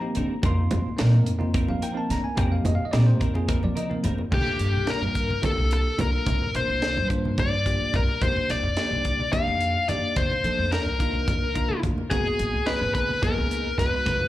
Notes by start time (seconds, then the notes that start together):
Already playing: F3 A#5
0.01 A#3 C4 D#4 G4
0.15 D3 G3 C4 D#4 A#4, closed hi-hat
0.31 muted upright bass stroke
0.42 F2 G3 A#3 C4 D#4 F4 A#4 C6, kick, closed hi-hat, high conga, low conga
0.57 low conga
0.71 F2, closed hi-hat, low conga
0.86 muted upright bass stroke
0.97 A#2 G3 A#3 C4 D#4 A#4, snare, closed hi-hat
1.13 low conga
1.26 F2, closed hi-hat
1.39 A#3 C4 D#4 F4, high conga
1.54 G3 C4 D#4 A#4, kick, closed hi-hat, low conga
1.68 F3 F5, low conga
1.82 C4 D#4 A#4 G5, closed hi-hat
1.94 A#3 C4 D#4 A#4 A5
2.10 D3 A#5, snare, closed hi-hat
2.24 G#5, muted upright bass stroke
2.35 F2 G3 A#3 C4 D#4 G4 A#4 G5, kick, closed hi-hat, high conga, low conga
2.52 F5
2.65 F2 D#5, closed hi-hat, low conga
2.75 F5
2.80 muted upright bass stroke
2.85 D#5
2.91 A#2 G3 A#3 C4 D#4 G4 A#4 D5, snare, closed hi-hat
3.06 C5, low conga
3.20 F2 C4 D#4 A#4, kick, closed hi-hat
3.34 A#3 C4 D#4 F4 G#4, high conga, low conga
3.48 G3 C4 D#4 A#4, kick, closed hi-hat
3.63 F3 D5, low conga
3.75 C4 D#4 A#4 D#5, closed hi-hat, high conga
3.90 A#3 C4 D#4 A#4, high conga
4.03 D3 G3 C4 D#4 A#4, closed hi-hat, low conga
4.18 muted upright bass stroke, low conga
4.30 C2 A#3 D4 F4 G4 A4, kick, crash, high conga
4.46 muted upright bass stroke, low conga
4.59 G2, closed hi-hat
4.74 C2, low conga
4.85 A#3 D4 F4 A#4, snare, closed hi-hat, low conga
4.90 A#4
5.01 G2, low conga
5.15 kick, closed hi-hat
5.30 high conga
5.42 A#3 D4 F4 G4 A4, kick, closed hi-hat, low conga
5.57 C2, low conga
5.71 A4, closed hi-hat
5.85 low conga
5.97 C2 A#3 D4 F4 A#4, closed hi-hat, low conga
6.26 C2, kick, closed hi-hat, high conga
6.41 low conga
6.54 C3 A#3 D4 F4 C5, closed hi-hat
6.69 C2, low conga
6.82 snare, closed hi-hat, low conga
6.97 G2, low conga
7.09 A#3 D4 F4 C5, kick, closed hi-hat
7.25 high conga
7.38 D5, kick, closed hi-hat, low conga
7.52 low conga
7.66 A#3 D4 F4 G4, kick, closed hi-hat
7.80 muted upright bass stroke, low conga
7.94 C2 A#4, kick, closed hi-hat, low conga
8.21 F2 A#3 D4 D#4 G4 C5, kick, closed hi-hat, high conga
8.36 muted upright bass stroke, low conga
8.50 C2 D5, snare, closed hi-hat
8.63 F2
8.77 A#3 D4 D#4 G4, snare, closed hi-hat, low conga
8.91 C2, low conga
9.05 kick, closed hi-hat
9.19 high conga
9.32 A#3 D4 D#4 G4 F5, kick, closed hi-hat, low conga
9.47 F2, low conga
9.61 closed hi-hat
9.75 low conga
9.88 F2 A#3 D4 D#4 G4 D5, closed hi-hat, low conga
10.16 F2 C5, kick, closed hi-hat, high conga, low conga
10.30 low conga
10.44 F3 A#3 D4 D#4 A4, closed hi-hat, low conga
10.58 F2
10.72 A#4, snare, closed hi-hat
10.86 C2, low conga
10.99 A#3 D4 D#4 F4, kick, closed hi-hat
11.13 high conga
11.28 kick, closed hi-hat, low conga
11.42 high conga
11.55 A#3 D4 D#4 F4, kick, closed hi-hat, high conga
11.70 muted upright bass stroke, high conga
11.83 D2, kick, closed hi-hat, low conga
11.98 low conga
12.10 C#2 F#3 A#3 B3 D#4 F#4 G#4 A#4, kick, closed hi-hat, high conga
12.25 muted upright bass stroke, low conga
12.39 G#1, closed hi-hat
12.54 C#2
12.66 F#3 A#3 B3 D#4 G#4 A#4 B4, snare, closed hi-hat
12.81 G#1, low conga
12.94 B3 D#4 A#4 B4, kick, closed hi-hat
13.09 high conga
13.22 F#3 A#3 B3 D#4 G#4 A#4, kick, closed hi-hat, low conga
13.36 C#2, low conga
13.50 B3 D#4 A#4, closed hi-hat
13.64 low conga
13.78 C#2 F#3 G#3 B3 D#4 F#4 A#4 B4, snare, closed hi-hat, low conga
14.06 C#2 F#3 B3 D#4 A#4, kick, closed hi-hat, high conga
14.20 low conga